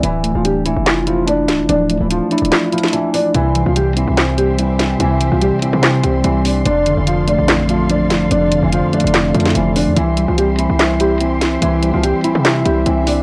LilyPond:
<<
  \new Staff \with { instrumentName = "String section" } { \time 4/4 \key c \major \tempo 4 = 145 << { r1 | r1 | c'''1~ | c'''1~ |
c'''1~ | c'''1 | c'''1~ | c'''1 | } \\ { r1 | r1 | <g' c'' e''>1~ | <g' c'' e''>1 |
<a' d'' f''>1~ | <a' d'' f''>1 | <g' c'' e''>1~ | <g' c'' e''>1 | } >> }
  \new Staff \with { instrumentName = "Nylon-string guitar" } { \time 4/4 \key c \major <e e'>8. <f f'>16 <g g'>8 <e e'>4 <f f'>8 <d' d''>4 | <d' d''>8. <e e'>16 <f f'>8 <d' d''>4 <f f'>8 <e e'>8 <d' d''>8 | <e e'>8. <f f'>16 <g g'>8 <e e'>4 <g g'>8 <e e'>4 | <e e'>8. <f f'>16 <g g'>8 <e e'>4 <g g'>8 <e e'>8 <d' d''>8 |
<d' d''>8. <e e'>16 <f f'>8 <d' d''>4 <f f'>8 <d' d''>4 | <d' d''>8. <e e'>16 <f f'>8 <d' d''>4 <f f'>8 <e e'>8 <d' d''>8 | <e e'>8. <f f'>16 <g g'>8 <e e'>4 <g g'>8 <e e'>4 | <e e'>8. <f f'>16 <g g'>8 <e e'>4 <g g'>8 <e e'>8 <d' d''>8 | }
  \new Staff \with { instrumentName = "Tine electric piano" } { \time 4/4 \key c \major e8 a8 d'8 e'8 f'8 e'8 d'4 | f8 a8 d'8 e'8 f'8 e'8 d'4 | c8 e8 g8 c'8 c''8 c'8 g4 | c8 e8 g8 c'8 c''8 c'8 g4 |
f,8 d8 f8 a8 c'8 a8 f4 | f,8 d8 f8 a8 c'8 a8 f4 | e8 g8 c'8 e'8 e''8 e'8 c'4 | e8 g8 c'8 e'8 e''8 e'8 c'4 | }
  \new Staff \with { instrumentName = "808-style bass" } { \clef bass \time 4/4 \key c \major d,,8. d,,4 f,,4.~ f,,16 c,,16 f,,16 | d,,8. d,,8 r8 d,,16 r2 | c,8. c,4 c,2~ c,16 | c,8. c,8 r8 c8. c,8 c,4 |
f,,8. f,,4 a,,4.~ a,,16 e,,16 a,,16 | f,,8. f,,8 r8 f,,8. f,8 f,,8. f,16 | c,8. c,4 c,2~ c,16 | c,8. c,8 r8 c8. c,8 c,4 | }
  \new DrumStaff \with { instrumentName = "Drums" } \drummode { \time 4/4 hh8 hh8 hh8 hh8 <hc hh sn>8 hh8 hh8 <hh sn>8 | hh8 hh8 \tuplet 3/2 { hh16 r16 r16 hh16 hh16 hh16 } <hc hh sn>8 hh32 hh32 <hh sn>32 hh32 hh8 hho8 | hh8 hh8 hh8 hh8 <hc hh sn>8 hh8 hh8 <hh sn>8 | hh8 hh8 hh8 hh8 <hc hh sn>8 hh8 hh8 hho8 |
hh8 hh8 hh8 hh8 <hc hh sn>8 hh8 hh8 <hh sn>8 | hh8 hh8 \tuplet 3/2 { hh16 r16 r16 hh16 hh16 hh16 } <hc hh sn>8 hh32 hh32 <hh sn>32 hh32 hh8 hho8 | hh8 hh8 hh8 hh8 <hc hh sn>8 hh8 hh8 <hh sn>8 | hh8 hh8 hh8 hh8 <hc hh sn>8 hh8 hh8 hho8 | }
>>